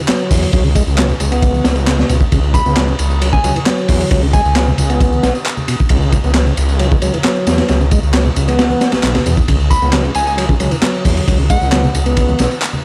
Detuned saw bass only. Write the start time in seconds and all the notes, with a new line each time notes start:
0.31 E2
0.53 C#2
0.87 C#2
1.20 C#2
1.65 C#2
2.10 C#2
2.32 C#2
2.66 C#2
2.99 C#2
3.44 C#2
3.89 E2
4.11 C#2
4.45 C#2
4.79 C#2
5.23 B1
5.90 C#2
6.24 C#2
6.57 C#2
7.02 C#2
7.47 E2
7.69 C#2
8.03 C#2
8.36 C#2
8.93 B1
9.04 B1
9.26 E2
9.48 C#2
9.82 C#2
10.16 C#2
10.60 C#2
11.05 E2
11.28 C#2
11.61 C#2
11.95 C#2
12.40 B1